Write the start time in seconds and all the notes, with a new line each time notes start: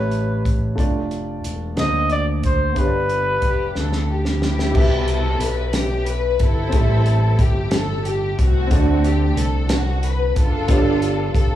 Already playing: A1 A2 A3 E4 G4 B4 C#5
0.11 closed hi-hat
0.45 kick, closed hi-hat
0.75 F1 A3 D4 F4 D5, kick, closed hi-hat
1.11 closed hi-hat
1.44 E1, closed hi-hat
1.76 D2 D3 A#3 D4 F#4 C5 D#5, snare, closed hi-hat
2.10 D5, closed hi-hat
2.43 C5, kick, closed hi-hat
2.72 B3 D4
2.76 G1 G2 G4 B4, kick, closed hi-hat
2.80 C#5
2.87 D5
3.09 closed hi-hat
3.42 F1 G4, kick, closed hi-hat
3.75 D2 A4, snare
3.92 snare
4.11 G4
4.25 snare
4.42 B3 E4 G4, snare
4.59 snare
4.71 C2 B2 E4 G4
4.75 B4 E5, kick, crash
5.08 A4, closed hi-hat
5.39 B1 B4, closed hi-hat
5.73 G4, snare, closed hi-hat
6.06 B4, closed hi-hat
6.39 G1 C4 E4 A4, kick, closed hi-hat
6.69 A1 A2 G3 C4, kick, closed hi-hat
6.74 A4 E5
7.06 closed hi-hat
7.38 G1 G4, kick, closed hi-hat
7.71 A4, snare, closed hi-hat
8.05 G4, closed hi-hat
8.39 C2 A3 C4 F#4, kick, closed hi-hat
8.67 D3 C4 F4
8.71 D2 A4 D5, kick, closed hi-hat
8.75 D4
9.04 G4, closed hi-hat
9.36 C2 A4, closed hi-hat
9.69 F#4, snare, closed hi-hat
10.03 B4, closed hi-hat
10.36 F#1 D4 F4 A4, kick, closed hi-hat
10.67 G1 G2 B3 F4 G4, kick, closed hi-hat
10.71 C#5
10.78 D5
11.02 closed hi-hat
11.34 F1 A4, kick, closed hi-hat